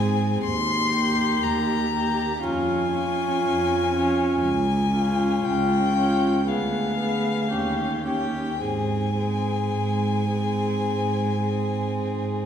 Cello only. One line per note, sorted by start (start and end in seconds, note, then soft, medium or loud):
0.00 0.31 G#2 medium
0.42 1.30 D#2 medium
1.42 2.31 D#2 medium
2.43 3.31 F2 medium
3.43 4.31 F2 medium
4.43 5.32 C#2 medium
5.43 6.35 C#2 medium
6.47 7.39 D2 medium
7.52 8.48 D#2 medium
8.60 9.60 G#2 medium
9.73 10.74 G#2 soft
10.88 11.86 G#2 soft
12.00 12.46 G#2 soft